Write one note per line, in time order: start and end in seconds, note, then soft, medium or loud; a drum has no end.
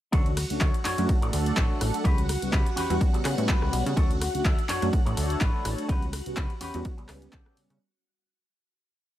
0.12 0.45 D2 loud
0.12 0.32 A3 medium
0.12 0.33 C#4 medium
0.12 0.26 D4 loud
0.12 0.33 D4 medium
0.12 0.26 F#4 loud
0.12 7.82 F#4 medium
0.12 0.33 F#4 medium
0.12 0.26 A4 loud
0.12 0.27 C#5 loud
0.12 7.82 F#5 medium
0.12 kick loud
0.12 closed hi-hat medium
0.12 ride medium
0.26 closed hi-hat soft
0.37 muted clean electric guitar stroke soft
0.37 cross-stick medium
0.37 open hi-hat loud
0.37 ride medium
0.50 0.59 D2 soft
0.50 0.69 A3 medium
0.50 0.69 C#4 medium
0.50 0.69 D4 medium
0.50 0.69 F#4 medium
0.50 closed hi-hat medium
0.61 0.71 D2 loud
0.61 0.74 D4 medium
0.61 0.74 F#4 medium
0.61 0.74 A4 medium
0.61 0.75 C#5 loud
0.61 kick loud
0.61 clap loud
0.61 closed hi-hat medium
0.61 ride medium
0.74 closed hi-hat soft
0.84 0.96 F#2 soft
0.84 1.03 D4 medium
0.84 1.04 F#4 medium
0.84 1.04 A4 medium
0.84 1.04 C#5 loud
0.84 clap medium
0.84 open hi-hat loud
0.84 ride medium
0.97 1.06 F#2 loud
0.97 1.17 A3 loud
0.97 1.17 C#4 medium
0.97 1.17 D4 medium
0.97 1.17 F#4 loud
0.97 closed hi-hat medium
1.09 1.20 A1 soft
1.09 kick loud
1.09 closed hi-hat medium
1.09 ride medium
1.21 1.31 A1 medium
1.21 2.02 A3 medium
1.21 2.03 D4 medium
1.21 2.03 A4 loud
1.21 muted clean electric guitar stroke loud
1.21 closed hi-hat soft
1.32 1.52 D2 medium
1.32 muted clean electric guitar stroke soft
1.32 open hi-hat loud
1.32 ride medium
1.46 muted clean electric guitar stroke soft
1.46 closed hi-hat medium
1.56 1.67 A1 loud
1.56 1.81 D4 medium
1.56 1.81 F#4 medium
1.56 1.81 A4 medium
1.56 1.81 C#5 medium
1.56 kick loud
1.56 clap loud
1.56 closed hi-hat medium
1.56 ride medium
1.81 1.91 A1 medium
1.81 cross-stick medium
1.81 open hi-hat loud
1.81 ride medium
1.94 closed hi-hat medium
2.04 2.37 C#2 loud
2.04 2.25 G3 medium
2.04 2.25 B3 medium
2.04 2.18 C#4 loud
2.04 2.25 C#4 medium
2.04 2.18 F#4 loud
2.04 2.25 F#4 medium
2.04 2.18 G4 loud
2.04 2.19 B4 loud
2.04 kick loud
2.04 closed hi-hat medium
2.04 ride medium
2.18 closed hi-hat soft
2.28 muted clean electric guitar stroke soft
2.28 cross-stick medium
2.28 open hi-hat loud
2.28 ride medium
2.42 2.51 C#2 soft
2.42 2.61 G3 medium
2.42 2.61 B3 medium
2.42 2.61 C#4 medium
2.42 2.61 F#4 medium
2.42 closed hi-hat medium
2.52 2.63 C#2 loud
2.52 2.66 C#4 medium
2.52 2.66 F#4 medium
2.52 2.66 G4 medium
2.52 2.66 B4 loud
2.52 kick loud
2.52 clap loud
2.52 closed hi-hat medium
2.52 ride medium
2.66 closed hi-hat soft
2.76 2.88 E2 soft
2.76 2.95 C#4 medium
2.76 2.95 F#4 medium
2.76 2.96 G4 medium
2.76 2.96 B4 medium
2.76 open hi-hat loud
2.76 ride medium
2.90 2.98 E2 loud
2.90 3.09 G3 loud
2.90 3.09 B3 medium
2.90 3.09 C#4 medium
2.90 3.09 F#4 loud
2.90 closed hi-hat medium
3.01 kick loud
3.01 closed hi-hat medium
3.01 ride medium
3.13 3.23 C#3 soft
3.13 3.94 G3 medium
3.13 3.94 B3 medium
3.13 3.95 C#4 medium
3.13 muted clean electric guitar stroke loud
3.13 closed hi-hat soft
3.24 3.35 C#3 medium
3.24 muted clean electric guitar stroke soft
3.24 cross-stick medium
3.24 clap medium
3.24 open hi-hat loud
3.24 ride medium
3.38 3.56 A2 medium
3.38 muted clean electric guitar stroke soft
3.38 closed hi-hat medium
3.48 3.73 C#4 medium
3.48 3.73 F#4 medium
3.48 3.73 G4 medium
3.48 3.73 B4 loud
3.48 kick loud
3.48 clap loud
3.48 closed hi-hat medium
3.48 ride medium
3.62 3.70 C#2 medium
3.62 cross-stick medium
3.73 3.83 B1 medium
3.73 open hi-hat loud
3.73 ride medium
3.86 3.94 C#3 medium
3.86 closed hi-hat medium
3.96 4.29 D2 loud
3.96 4.16 A3 medium
3.96 4.17 C#4 medium
3.96 4.10 D4 loud
3.96 4.17 D4 medium
3.96 4.10 F#4 loud
3.96 4.17 F#4 medium
3.96 4.10 A4 loud
3.96 4.11 C#5 loud
3.96 kick loud
3.96 closed hi-hat medium
3.96 ride medium
4.11 closed hi-hat soft
4.20 muted clean electric guitar stroke soft
4.20 cross-stick medium
4.20 open hi-hat loud
4.20 ride medium
4.34 4.43 D2 soft
4.34 4.53 A3 medium
4.34 4.53 C#4 medium
4.34 4.53 D4 medium
4.34 4.53 F#4 medium
4.34 closed hi-hat soft
4.45 4.55 D2 loud
4.45 4.58 D4 medium
4.45 4.58 F#4 medium
4.45 4.58 A4 medium
4.45 4.59 E5 loud
4.45 kick loud
4.45 clap loud
4.45 closed hi-hat medium
4.45 ride medium
4.59 closed hi-hat soft
4.68 4.80 F#2 soft
4.68 4.87 D4 medium
4.68 4.88 F#4 medium
4.68 4.88 A4 medium
4.68 4.88 C#5 loud
4.68 clap medium
4.68 open hi-hat loud
4.68 ride medium
4.82 4.90 F#2 loud
4.82 5.01 A3 loud
4.82 5.01 C#4 medium
4.82 5.01 D4 medium
4.82 5.01 F#4 loud
4.82 closed hi-hat medium
4.93 5.04 A1 soft
4.93 kick loud
4.93 closed hi-hat medium
4.93 ride medium
5.05 5.14 A1 medium
5.05 5.86 A3 medium
5.05 5.87 D4 medium
5.05 5.87 A4 loud
5.05 5.86 C#5 medium
5.05 muted clean electric guitar stroke loud
5.05 closed hi-hat soft
5.17 5.36 D2 medium
5.17 muted clean electric guitar stroke soft
5.17 open hi-hat loud
5.17 ride medium
5.30 muted clean electric guitar stroke soft
5.30 closed hi-hat medium
5.40 5.51 A1 loud
5.40 5.65 D4 medium
5.40 5.65 F#4 medium
5.40 5.65 A4 medium
5.40 5.66 B4 loud
5.40 kick loud
5.40 clap loud
5.40 closed hi-hat medium
5.40 ride medium
5.65 5.75 A1 medium
5.65 cross-stick medium
5.65 open hi-hat loud
5.65 ride medium
5.78 closed hi-hat medium
5.88 6.21 C#2 loud
5.88 6.09 G3 medium
5.88 6.09 B3 medium
5.88 6.02 C#4 loud
5.88 6.09 C#4 medium
5.88 6.02 F#4 loud
5.88 6.09 F#4 medium
5.88 6.02 G4 loud
5.88 6.03 B4 loud
5.88 kick loud
5.88 closed hi-hat medium
5.88 ride medium
6.02 closed hi-hat soft
6.12 muted clean electric guitar stroke soft
6.12 cross-stick medium
6.12 open hi-hat loud
6.12 ride medium
6.26 6.35 C#2 soft
6.26 6.45 G3 medium
6.26 6.45 B3 medium
6.26 6.45 C#4 medium
6.26 6.45 F#4 medium
6.26 closed hi-hat soft
6.36 6.47 C#2 loud
6.36 6.50 C#4 medium
6.36 6.50 F#4 medium
6.36 6.50 G4 medium
6.36 6.51 B4 medium
6.36 kick loud
6.36 clap loud
6.36 closed hi-hat medium
6.36 ride medium
6.50 closed hi-hat soft
6.61 6.72 E2 soft
6.61 6.79 C#4 medium
6.61 6.80 F#4 medium
6.61 6.80 G4 medium
6.61 6.80 B4 medium
6.61 open hi-hat loud
6.61 ride medium
6.74 6.83 E2 loud
6.74 6.93 G3 loud
6.74 6.93 B3 medium
6.74 6.93 C#4 medium
6.74 6.93 F#4 loud
6.74 closed hi-hat medium
6.85 kick loud
6.85 closed hi-hat medium
6.85 ride medium
6.97 7.07 C#2 soft
6.97 7.78 G3 medium
6.97 7.78 B3 medium
6.97 7.79 C#4 medium
6.97 muted clean electric guitar stroke loud
6.97 closed hi-hat soft
7.08 7.28 C#2 medium
7.08 muted clean electric guitar stroke soft
7.08 cross-stick medium
7.08 clap medium
7.08 open hi-hat loud
7.08 ride medium
7.22 muted clean electric guitar stroke soft
7.22 closed hi-hat soft
7.32 7.43 C#2 medium
7.32 7.57 C#4 medium
7.32 7.57 F#4 medium
7.32 7.57 G4 medium
7.32 7.57 A4 loud
7.32 kick loud
7.32 clap loud
7.32 closed hi-hat medium
7.32 ride medium
7.46 cross-stick medium
7.57 7.67 C#3 soft
7.57 open hi-hat loud
7.57 ride medium
7.70 7.78 C#3 medium
7.70 closed hi-hat medium